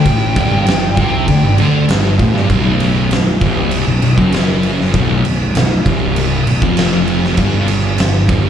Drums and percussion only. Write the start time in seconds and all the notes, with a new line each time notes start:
0.05 kick, crash
0.36 kick, crash
0.67 snare, crash
0.97 kick, crash
1.28 kick, crash
1.58 crash
1.89 snare, crash
2.19 kick, crash
2.36 snare
2.50 kick, crash
2.80 crash
3.11 snare, crash
3.41 kick, crash
3.71 crash
4.02 crash
4.18 kick
4.32 snare, crash
4.63 crash
4.81 snare
4.94 kick, crash
5.25 crash
5.55 snare, crash
5.86 kick, crash
6.16 crash
6.47 crash
6.62 kick
6.77 snare, crash
7.08 crash
7.24 snare
7.37 kick, crash
7.68 crash
7.98 snare, crash
8.29 kick, crash